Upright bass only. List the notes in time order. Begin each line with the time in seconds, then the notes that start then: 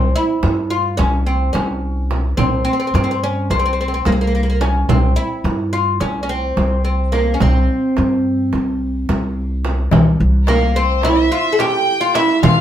Already playing: C2
0.43 G2
0.99 C2
1.55 C2
2.38 C2
2.94 G2
3.50 C2
4.06 C2
4.89 C2
5.44 G2
6.01 C2
6.57 C2
7.41 C2
7.98 G2
8.53 C2
9.09 C2
9.92 C2
10.20 C2
12.43 C2